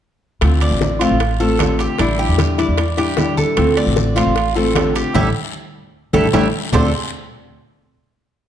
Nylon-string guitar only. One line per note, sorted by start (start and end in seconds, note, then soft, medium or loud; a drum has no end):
0.42 1.00 D3 medium
0.42 1.02 A3 medium
0.42 1.00 C4 medium
0.42 0.98 F4 medium
1.00 1.20 A3 medium
1.00 1.19 C4 medium
1.00 1.19 F4 medium
1.20 muted nylon-string guitar stroke medium
1.40 1.59 A3 medium
1.40 1.59 C4 medium
1.40 1.59 F4 medium
1.60 1.98 D3 soft
1.60 1.99 A3 medium
1.60 1.99 C4 medium
1.60 1.99 F4 medium
1.99 2.57 D3 medium
1.99 2.58 G3 medium
1.99 2.59 D4 medium
1.99 2.57 E4 medium
2.58 2.77 G3 medium
2.58 2.78 D4 medium
2.58 2.77 E4 medium
2.78 muted nylon-string guitar stroke medium
2.97 3.17 G3 medium
2.97 3.17 D4 medium
2.97 3.17 E4 medium
3.17 3.56 D3 medium
3.17 3.57 G3 medium
3.17 3.57 D4 medium
3.17 3.57 E4 medium
3.57 4.15 D3 medium
3.57 4.17 A3 medium
3.57 4.15 C4 medium
3.57 4.14 F4 medium
4.15 4.34 A3 medium
4.15 4.35 C4 medium
4.15 4.35 F4 medium
4.35 muted nylon-string guitar stroke medium
4.55 4.74 A3 medium
4.55 4.75 C4 medium
4.55 4.75 F4 medium
4.74 5.14 D3 medium
4.74 5.14 A3 medium
4.74 5.14 C4 medium
4.74 5.15 F4 medium
5.14 5.28 G3 medium
5.14 5.27 A3 medium
5.14 5.27 D4 medium
6.14 6.26 G3 medium
6.14 6.26 A3 medium
6.14 6.26 D4 medium
6.33 6.46 G3 loud
6.33 6.46 A3 loud
6.33 6.46 D4 loud
6.73 6.89 D3 medium
6.73 6.89 A3 medium
6.73 6.89 C4 medium
6.73 6.89 F4 medium